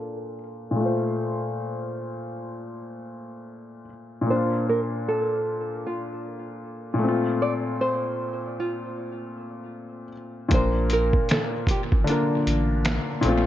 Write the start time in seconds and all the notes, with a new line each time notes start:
Already playing: A#2 A#3 D4 F4 A4
0.71 A#2
0.76 A3
0.81 F4
0.85 C5
4.21 A#2
4.26 A#3 C5
4.31 D4
4.36 F4
4.69 A#4
5.08 A4
5.87 F4
6.94 A#2
6.99 A3
7.03 C4
7.08 F4
7.42 D5
7.81 C5
8.60 F4
10.49 A#1 A#2 A#3, kick, closed hi-hat
10.53 D4 A#4 C5
10.90 A#4, closed hi-hat
11.13 kick
11.29 A4, finger snap, snare, closed hi-hat
11.67 G4, kick, closed hi-hat
11.92 A1, kick
12.04 D3 A#3, closed hi-hat
12.09 D4 F4 A#4
12.47 A1, closed hi-hat
12.85 finger snap, snare, closed hi-hat
13.21 A#1 A#2 A3, closed hi-hat
13.26 C4 F4